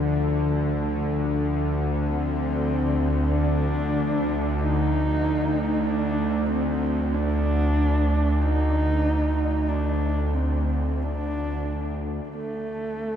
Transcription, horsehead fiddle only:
2.07 C4
3.34 D4
4.62 D#4
5.87 D4
6.50 C4
7.14 D4
8.42 D#4
9.68 D4
10.34 C4
11.02 D4
12.29 A3

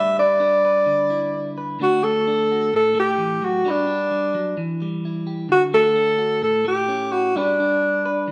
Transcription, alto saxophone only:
Already playing: E5
0.19 D5
1.83 F#4
2.04 A4
2.76 A4
3.00 G4
3.45 F#4
3.70 D4
5.52 F#4
5.74 A4
6.43 A4
6.68 G4
7.12 F#4
7.37 D4

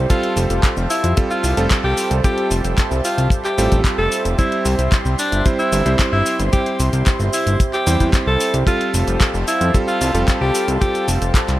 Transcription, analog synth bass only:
0.36 F1
0.50 F1
0.77 F1
1.04 F2
1.44 C2
1.57 F1
1.84 C2
2.11 C2
2.51 F1
2.64 F1
2.91 C2
3.18 C2
3.58 A1
3.72 A1
3.98 F1
4.25 F1
4.65 C2
4.79 C2
5.05 C2
5.32 G1
5.72 G1
5.86 C2
6.12 G1
6.39 G1
6.80 C2
6.93 C2
7.20 G1
7.47 G1
7.87 E2
8.01 E2
8.27 C2
8.54 C2
8.94 F1
9.07 F1
9.34 F1
9.61 F2
10.01 C2
10.14 F1
10.41 C2
10.68 C2
11.08 F1
11.21 F1
11.48 C2

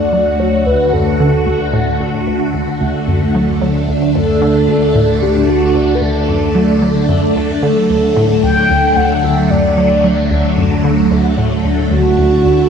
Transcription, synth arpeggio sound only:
0.13 F#3
0.40 F#3
0.66 D2
0.93 F#2
1.20 D3
1.47 D2
1.73 A2
2.00 D2
2.27 D2
2.54 D2
2.81 D2
3.08 F#2
3.35 F#3
3.62 F#3
3.88 D2
4.15 F#2
4.42 D3
4.68 D2
4.95 A2
5.22 D2
5.48 D2
5.75 D2
6.02 D2
6.28 F#2
6.55 F#3
6.82 F#3
7.09 F#2
7.36 D2
7.63 D3
7.90 D2
8.16 A2
8.43 D2
8.70 D2
8.97 D2
9.24 D2
9.51 F#2
9.77 F#3
10.04 F#3
10.31 D2
10.58 F#2
10.84 D3
11.11 D2
11.38 A2
11.64 D2
11.91 D2
12.18 D2
12.45 D2

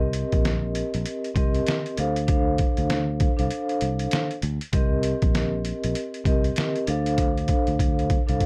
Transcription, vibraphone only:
Already playing: C4 G4 A#4 D#5
1.35 C4 G4 A#4 D#5
1.97 D4 A4 C5 F5
2.27 D4 A4 C5 F5
3.37 D4 A4 C5 F5
4.72 C4 G4 A#4 D#5
6.24 C4 G4 A#4 D#5
6.87 D4 A4 C5 F5
7.17 D4 A4 C5 F5
8.26 D4 A4 C5 F5

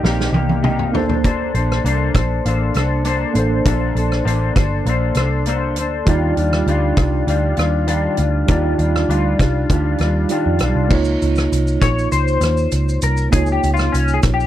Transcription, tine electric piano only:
Already playing: A#3 D#4 G4 D5
0.92 A#3 D4 A4
0.97 C5
3.34 A#3 D4 A4
3.38 C5
6.05 G3 D#4 F4
6.10 D5
8.46 G3 D#4 F4
8.52 D5
10.29 G3 D#4 F4 D5
10.89 A#3 D#4 F4
10.94 C#5
13.31 A#3 D#4 F4
13.36 C#5

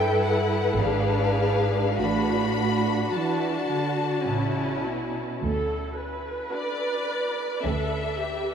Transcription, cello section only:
Already playing: G2
0.79 G#2
1.99 A2
3.14 E3
3.71 D3
4.27 C#3
4.84 B2
5.42 D2
7.64 D2

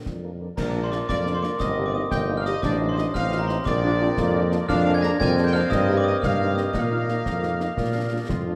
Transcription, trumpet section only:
0.24 D5
0.41 D5
0.56 A#4
0.84 C5
0.91 D5
1.08 D5
1.33 C5
1.43 D5
1.61 D#5
1.87 D5
1.94 D#5
2.11 G5
2.39 F5
2.46 D#5
2.64 D5
2.91 C5
2.98 D#5
3.16 F5
3.42 A#4
3.49 C5
3.66 D5
4.69 F5
4.96 G#5
5.03 A#5
5.21 G#5
5.47 G5
5.54 F5
5.71 D#5
5.99 D5
6.06 D#5
6.24 F5
6.58 D#5
6.76 F5
8.30 F4

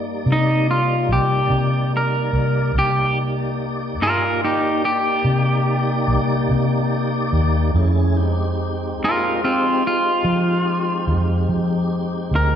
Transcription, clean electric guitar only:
0.32 D#4
0.71 F4
1.13 G4
1.97 A#4
2.79 G4
4.02 F4 A#4
4.44 D#4 G4
4.85 G4
9.04 F4 A#4
9.44 C4 F4
9.87 F4
12.36 A#4

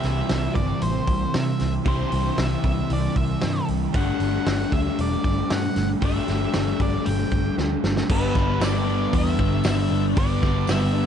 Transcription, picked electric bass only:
0.04 C2
0.30 C2
0.56 G1
0.82 A1
1.07 C2
1.35 C3
1.61 C2
1.86 C2
2.12 C2
2.38 C2
2.64 C2
2.90 C2
3.16 C2
3.43 G2
3.69 C2
3.95 G1
4.20 G1
4.47 G1
4.72 D2
4.99 E1
5.25 G1
5.51 G2
5.77 G1
6.02 G1
6.29 G1
6.56 G1
6.80 G1
7.07 G1
7.32 G1
7.58 D2
7.84 G1
8.10 G1
8.36 G1
8.60 G1
9.14 E2
9.39 G1
9.64 G1
9.91 G1
10.17 G1
10.43 G1
10.69 G1

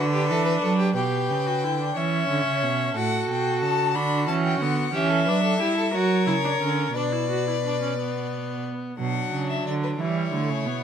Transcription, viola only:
Already playing: D4
0.96 G4
1.47 F#4
1.64 E4
1.80 D4
1.97 C#4
2.96 F#4
3.95 D4
4.28 C#4
4.61 B3
4.94 C#4
5.28 D4
5.60 E4
5.94 F#4
6.27 E4
6.44 D4
6.61 C#4
6.96 D4
7.13 E4
7.30 F#4
7.47 E4
7.65 D4
7.82 C#4
7.99 B3
9.00 F#3
10.00 G3
10.33 A3
10.66 B3

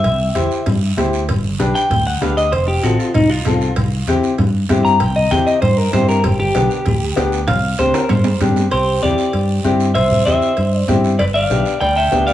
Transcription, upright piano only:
0.35 E4 G4 C5
0.97 E4 G4 C5
1.59 D4 G4 B4
2.21 D4 G4 B4
2.83 C4 F4 A4
3.45 C4 F4 A4
4.08 C4 E4 G4
4.69 C4 E4 G4
5.31 C4 E4 G4
5.93 C4 E4 G4
6.55 B3 D4 G4
7.16 B3 D4 G4
7.79 C4 D4 G4
8.40 C4 D4 G4
9.02 C4 E4 G4
9.64 C4 E4 G4
10.26 C4 E4 G4
10.88 C4 E4 G4
11.50 B3 D4 G4
12.12 B3 D4 G4

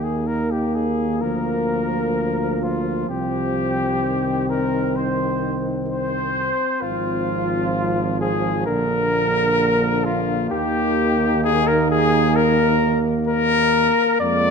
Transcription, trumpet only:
0.04 G#4
0.27 A#4
0.51 G4
0.75 G#4
1.21 A#4
2.63 F4
3.10 G4
4.49 A#4
4.96 C5
5.89 C5
6.82 F4
8.21 G#4
8.67 A#4
10.05 F4
10.50 G4
11.44 G#4
11.67 A#4
11.90 G#4
12.36 A#4
13.28 A#4
14.20 D5

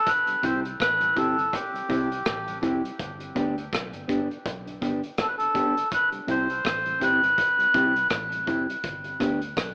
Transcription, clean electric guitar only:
0.43 C4 E4 G4
1.16 C4 E4 G4
1.89 C4 E4 G4
2.62 C4 E4 G4
3.35 B3 D4 G4
4.08 B3 D4 G4
4.81 B3 D4 G4
5.54 B3 D4 G4
6.27 C4 E4 G4
7.01 C4 E4 G4
7.74 C4 E4 G4
8.47 C4 E4 G4
9.20 B3 D4 G4

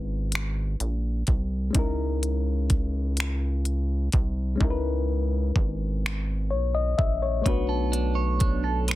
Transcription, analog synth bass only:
Already playing: G#1
0.80 A#1
1.28 C2
1.75 C#2
4.14 C2
4.61 C#2
5.56 G#1
6.51 B1
6.99 A#1
7.46 B1

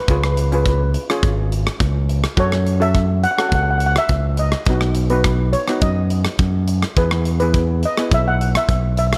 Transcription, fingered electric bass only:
0.08 C#2
1.23 G#1
1.80 C#2
2.37 F#2
3.52 C#2
4.09 C#2
4.66 B1
5.82 F#2
6.39 F#2
6.97 E2
8.12 B1
8.69 B1

